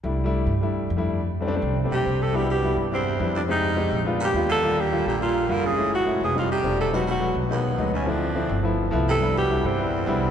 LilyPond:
<<
  \new Staff \with { instrumentName = "Alto saxophone" } { \time 4/4 \key c \major \tempo 4 = 209 r1 | r2 r8 g'4 a'8 | g'8 g'4 r8 c'4. d'8 | ees'2 r8 g'4 a'8~ |
a'8 g'4 g'8 f'4 bes'8 aes'8~ | aes'8 fis'4 gis'8 f'8 g'4 a'8 | fis'8 fis'4 r8 b4. des'8 | d'2 r4. a'8~ |
a'8 g'4 c'2~ c'8 | }
  \new Staff \with { instrumentName = "Grand piano" } { \time 4/4 \key c \major r1 | r2 r8 g''8 c''4 | r1 | r1 |
r1 | r1 | r1 | r1 |
r1 | }
  \new Staff \with { instrumentName = "Grand piano" } { \time 4/4 \key c \major <g a d' e'>8 r16 <g a d' e'>8. r8 <g a d' e'>4 r16 <g a d' e'>8. | r8. <g a c' d'>16 <g a c' d'>16 <g a c' d'>8. r16 <g a c' d'>4~ <g a c' d'>16 r8 | <g b d' e'>8. r16 <g b d' e'>8. r16 <g b d' g'>8. r16 <g b d' e'>8. r16 | <aes c' ees' g'>8. r16 <aes c' ees' g'>8. r16 <aes ces' d' f'>8. r16 <aes ces' d' f'>8. r16 |
<g bes d' f'>8. r16 <g bes d' f'>8. r16 <g bes d' f'>8. r16 <g bes d' f'>8. r16 | <gis a cis' e'>8. r16 <gis a cis' e'>8. r16 <g a c' ees'>8. r16 <g a c' d'>8. r16 | <fis gis b dis'>8. r16 <fis gis b fis'>8. r16 <fis gis b dis'>8. r16 <fis gis b dis'>8. r16 | <f a c' e'>8. r16 <f a c' e'>8. r16 <f a b e'>8. r16 <f a b e'>8. r16 |
<g b d' e'>8. r16 <g b d' e'>8. r16 <g b d' e'>8. r16 <g b d' e'>8. r16 | }
  \new Staff \with { instrumentName = "Baritone saxophone" } { \clef bass \time 4/4 \key c \major r1 | r2 r8 c4 c8 | b,8 b,4 r8 e,4. f,8 | aes,2 r8 bes,4 d8~ |
d8 bes,4 bes,8 bes,4 d8 des8~ | des8 a,4 b,8 a,8 c4 c8 | b,8 b,4 r8 dis,4. e,8 | f,2 r4. c8~ |
c8 b,4 e,2~ e,8 | }
  \new Staff \with { instrumentName = "Upright bass" } { \clef bass \time 4/4 \key c \major c,4. g,4. f,4~ | f,4. c,4 b,,8 c,4~ | c,4. g,4. f,4~ | f,4. bes,,4. ees,4~ |
ees,4. bes,,4. fis,,4~ | fis,,4. f,,4. e,,4~ | e,,4. b,,4. d,4~ | d,4. g,,4. c,4~ |
c,4. g,4. c,4 | }
>>